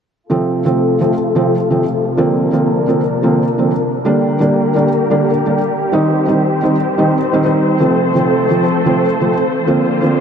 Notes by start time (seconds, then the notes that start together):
0.30 C3 F3 A3 C4 F4 A4
0.65 C3 F3 A3 C4
1.00 C3 F3 A3 C4
1.35 C3 F3 A3 C4
1.70 C3 F3 A3 C4
2.17 D3 F3 A#3 C4 D4 A#4
2.52 D3 F3 A#3 C4
2.88 D3 F3 A#3 C4
3.23 D3 F3 A#3 C4
3.58 D3 F3 A#3 C4
4.05 D3 G3 A#3 D4 G4 A#4
4.40 D3 G3 A#3 D4
4.75 D3 G3 A#3 D4
5.10 D3 G3 A#3 D4
5.45 D3 G3 A#3 D4
5.92 D#3 G3 C4 D#4 C5
6.27 D#3 G3 C4 D#4
6.62 D#3 G3 C4 D#4
6.98 D#3 G3 C4 D#4
7.33 D#3 G3 C4 D#4
7.45 D#3 G3 C4 D#4
7.80 C3 F3 A3 C4 A4
8.15 C3 F3 A3 C4
8.50 C3 F3 A3 C4
8.85 C3 F3 A3 C4
9.20 C3 F3 A3 C4
9.67 D3 F3 A#3 C4 F4
10.02 D3 F3 A#3 C4